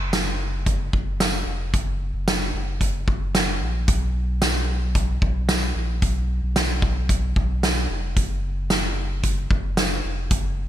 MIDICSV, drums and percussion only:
0, 0, Header, 1, 2, 480
1, 0, Start_track
1, 0, Key_signature, 6, "major"
1, 0, Tempo, 535714
1, 1556, Time_signature, 4, 2, 24, 8
1, 9573, End_track
2, 0, Start_track
2, 0, Title_t, "Drums"
2, 116, Note_on_c, 9, 38, 127
2, 117, Note_on_c, 9, 54, 61
2, 121, Note_on_c, 9, 42, 73
2, 206, Note_off_c, 9, 38, 0
2, 206, Note_off_c, 9, 54, 0
2, 210, Note_off_c, 9, 42, 0
2, 595, Note_on_c, 9, 36, 90
2, 595, Note_on_c, 9, 42, 74
2, 685, Note_off_c, 9, 36, 0
2, 685, Note_off_c, 9, 42, 0
2, 836, Note_on_c, 9, 36, 92
2, 926, Note_off_c, 9, 36, 0
2, 1078, Note_on_c, 9, 38, 101
2, 1079, Note_on_c, 9, 54, 60
2, 1080, Note_on_c, 9, 42, 62
2, 1167, Note_off_c, 9, 38, 0
2, 1168, Note_off_c, 9, 54, 0
2, 1169, Note_off_c, 9, 42, 0
2, 1555, Note_on_c, 9, 42, 72
2, 1556, Note_on_c, 9, 36, 104
2, 1645, Note_off_c, 9, 42, 0
2, 1646, Note_off_c, 9, 36, 0
2, 2040, Note_on_c, 9, 38, 123
2, 2040, Note_on_c, 9, 54, 69
2, 2044, Note_on_c, 9, 42, 70
2, 2129, Note_off_c, 9, 38, 0
2, 2130, Note_off_c, 9, 54, 0
2, 2134, Note_off_c, 9, 42, 0
2, 2516, Note_on_c, 9, 36, 80
2, 2518, Note_on_c, 9, 42, 72
2, 2605, Note_off_c, 9, 36, 0
2, 2607, Note_off_c, 9, 42, 0
2, 2757, Note_on_c, 9, 36, 94
2, 2846, Note_off_c, 9, 36, 0
2, 2999, Note_on_c, 9, 38, 106
2, 3000, Note_on_c, 9, 42, 64
2, 3000, Note_on_c, 9, 54, 56
2, 3088, Note_off_c, 9, 38, 0
2, 3089, Note_off_c, 9, 54, 0
2, 3090, Note_off_c, 9, 42, 0
2, 3475, Note_on_c, 9, 42, 82
2, 3477, Note_on_c, 9, 36, 114
2, 3565, Note_off_c, 9, 42, 0
2, 3567, Note_off_c, 9, 36, 0
2, 3958, Note_on_c, 9, 38, 115
2, 3958, Note_on_c, 9, 54, 69
2, 3962, Note_on_c, 9, 42, 74
2, 4047, Note_off_c, 9, 38, 0
2, 4048, Note_off_c, 9, 54, 0
2, 4051, Note_off_c, 9, 42, 0
2, 4436, Note_on_c, 9, 36, 88
2, 4436, Note_on_c, 9, 42, 70
2, 4525, Note_off_c, 9, 42, 0
2, 4526, Note_off_c, 9, 36, 0
2, 4676, Note_on_c, 9, 36, 92
2, 4766, Note_off_c, 9, 36, 0
2, 4916, Note_on_c, 9, 38, 113
2, 4917, Note_on_c, 9, 42, 68
2, 4917, Note_on_c, 9, 54, 64
2, 5005, Note_off_c, 9, 38, 0
2, 5006, Note_off_c, 9, 54, 0
2, 5007, Note_off_c, 9, 42, 0
2, 5395, Note_on_c, 9, 42, 76
2, 5396, Note_on_c, 9, 36, 98
2, 5485, Note_off_c, 9, 42, 0
2, 5486, Note_off_c, 9, 36, 0
2, 5877, Note_on_c, 9, 38, 122
2, 5877, Note_on_c, 9, 54, 65
2, 5881, Note_on_c, 9, 42, 75
2, 5967, Note_off_c, 9, 38, 0
2, 5967, Note_off_c, 9, 54, 0
2, 5971, Note_off_c, 9, 42, 0
2, 6114, Note_on_c, 9, 36, 94
2, 6203, Note_off_c, 9, 36, 0
2, 6355, Note_on_c, 9, 36, 91
2, 6358, Note_on_c, 9, 42, 76
2, 6445, Note_off_c, 9, 36, 0
2, 6448, Note_off_c, 9, 42, 0
2, 6597, Note_on_c, 9, 36, 91
2, 6686, Note_off_c, 9, 36, 0
2, 6839, Note_on_c, 9, 38, 105
2, 6840, Note_on_c, 9, 54, 54
2, 6841, Note_on_c, 9, 42, 69
2, 6929, Note_off_c, 9, 38, 0
2, 6930, Note_off_c, 9, 54, 0
2, 6931, Note_off_c, 9, 42, 0
2, 7316, Note_on_c, 9, 42, 66
2, 7317, Note_on_c, 9, 36, 99
2, 7406, Note_off_c, 9, 36, 0
2, 7406, Note_off_c, 9, 42, 0
2, 7797, Note_on_c, 9, 38, 127
2, 7797, Note_on_c, 9, 54, 60
2, 7801, Note_on_c, 9, 42, 64
2, 7887, Note_off_c, 9, 38, 0
2, 7887, Note_off_c, 9, 54, 0
2, 7891, Note_off_c, 9, 42, 0
2, 8274, Note_on_c, 9, 42, 78
2, 8276, Note_on_c, 9, 36, 83
2, 8364, Note_off_c, 9, 42, 0
2, 8365, Note_off_c, 9, 36, 0
2, 8517, Note_on_c, 9, 36, 96
2, 8607, Note_off_c, 9, 36, 0
2, 8756, Note_on_c, 9, 38, 120
2, 8757, Note_on_c, 9, 54, 53
2, 8758, Note_on_c, 9, 42, 65
2, 8846, Note_off_c, 9, 38, 0
2, 8847, Note_off_c, 9, 42, 0
2, 8847, Note_off_c, 9, 54, 0
2, 9235, Note_on_c, 9, 42, 67
2, 9237, Note_on_c, 9, 36, 109
2, 9324, Note_off_c, 9, 42, 0
2, 9327, Note_off_c, 9, 36, 0
2, 9573, End_track
0, 0, End_of_file